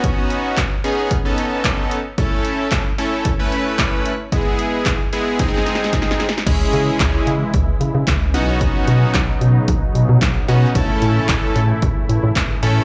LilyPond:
<<
  \new Staff \with { instrumentName = "Analog polysynth" } { \time 4/4 \key b \mixolydian \tempo 4 = 112 <b cis' dis' fis'>4 r8 <b cis' dis' gis'>8 r16 <b cis' dis' a'>4~ <b cis' dis' a'>16 r8 | <a cis' e' a'>4~ <a cis' e' a'>16 r16 <a cis' e' a'>8 r16 <a cis' e' b'>4~ <a cis' e' b'>16 r8 | <gis b e' gis'>4~ <gis b e' gis'>16 r16 <gis b e' gis'>8 <gis bis dis' gis'>16 <gis bis dis' gis'>4~ <gis bis dis' gis'>16 r8 | <gis cis' e' gis'>4. r2 <b cis' dis' fis'>8~ |
<b cis' dis' fis'>4 r2 r8 <b cis' dis' fis'>8 | <a cis' e' a'>4. r2 <a cis' e' a'>8 | }
  \new Staff \with { instrumentName = "Supersaw synth" } { \clef bass \time 4/4 \key b \mixolydian << { r1 | r1 | r1 | <e gis>2.~ <e gis>8 <fis b dis'>8~ |
<fis b dis'>1 | <e a e'>1 | } \\ { r1 | r1 | r1 | cis1~ |
cis1~ | cis1 | } >> }
  \new Staff \with { instrumentName = "FM bass" } { \clef bass \time 4/4 \key b \mixolydian r1 | r1 | r1 | cis,8 cis8 cis,8 cis8 cis,8 cis16 cis16 cis,8 b,,8~ |
b,,8 b,8 b,,8 b,8 b,,8 b,16 b,16 b,,8 b,8 | a,,8 a,8 a,,8 a,8 a,,8 a,16 a,16 a,,8 a,8 | }
  \new DrumStaff \with { instrumentName = "Drums" } \drummode { \time 4/4 <hh bd>8 hh8 <hc hh bd sn>8 hh8 <hh bd>8 hh8 <hc hh bd sn>8 hh8 | <hh bd>8 hh8 <hc hh bd sn>8 hh8 <hh bd>8 hh8 <hc hh bd sn>8 hh8 | <hh bd>8 hh8 <hc hh bd sn>8 hh8 \tuplet 3/2 { <hh bd sn>16 sn16 sn16 <hh sn>16 sn16 sn16 <hh bd sn>16 sn16 sn16 <hh sn>16 sn16 sn16 } | <cymc hh bd>8 hh8 <hc hh bd sn>8 hh8 <hh bd>8 hh8 <hc hh bd sn>8 hh8 |
<hh bd>8 hh8 <hc hh bd sn>8 hh8 <hh bd>8 hh8 <hc hh bd sn>8 hh8 | <hh bd>8 hh8 <hc hh bd sn>8 hh8 <hh bd>8 hh8 <hc hh bd sn>8 hh8 | }
>>